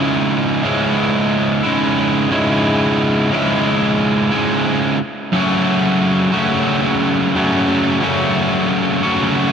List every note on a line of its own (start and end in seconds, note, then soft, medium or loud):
0.00 0.62 C#2 medium
0.00 0.61 G#2 medium
0.00 0.64 C#3 medium
0.00 0.65 G#3 loud
0.00 2.81 C#4 medium
0.00 0.65 E4 loud
0.62 1.61 C#2 medium
0.62 1.62 G#2 medium
0.62 1.62 C#3 medium
0.62 1.63 G#3 medium
0.62 1.62 E4 medium
1.63 2.28 C#2 medium
1.63 2.30 G#2 medium
1.63 2.30 C#3 medium
1.63 2.29 G#3 medium
1.63 2.29 E4 medium
2.30 3.29 C#2 medium
2.30 3.30 G#2 medium
2.30 3.30 C#3 medium
2.30 3.31 G#3 medium
2.30 3.31 E4 loud
3.31 4.30 C#2 medium
3.31 4.31 G#2 medium
3.31 4.31 C#3 medium
3.31 4.32 G#3 medium
3.31 4.30 E4 medium
4.31 4.99 C#2 medium
4.31 4.99 G#2 medium
4.31 4.98 C#3 medium
4.31 4.98 G#3 medium
4.31 4.97 E4 medium
5.33 6.35 F#2 medium
5.33 6.33 C#3 medium
5.33 6.34 F#3 medium
5.33 6.34 A3 medium
5.33 6.33 C#4 medium
5.33 6.33 F#4 loud
6.33 7.33 F#2 medium
6.33 7.34 C#3 medium
6.33 7.35 F#3 medium
6.33 7.33 A3 medium
6.33 7.33 C#4 medium
6.33 7.38 F#4 medium
7.34 8.00 F#2 medium
7.34 8.01 C#3 medium
7.34 8.02 F#3 medium
7.34 8.01 A3 medium
7.34 8.02 C#4 medium
7.34 8.04 F#4 medium
8.01 9.01 F#2 medium
8.01 9.01 C#3 medium
8.01 9.04 F#3 medium
8.01 9.02 A3 loud
8.01 9.02 C#4 loud
8.01 9.02 F#4 loud
9.03 9.52 F#2 medium
9.03 9.52 C#3 medium
9.03 9.52 F#3 medium
9.03 9.52 A3 medium
9.03 9.52 C#4 medium
9.03 9.52 F#4 medium